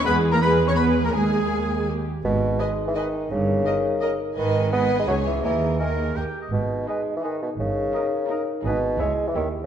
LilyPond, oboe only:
\new Staff \with { instrumentName = "Oboe" } { \time 3/4 \key gis \minor \tempo 4 = 168 b'8. ais'16 b'8. cis''16 b'8. ais'16 | gis'2 r4 | r4 dis''4 dis''4 | r4 dis''4 dis''4 |
r4 dis''4 cis''4 | r4 ais'4 g''8. dis''16 | r4 dis''4 dis''4 | r4 dis''4 dis''4 |
dis''4 e''4 e''4 | }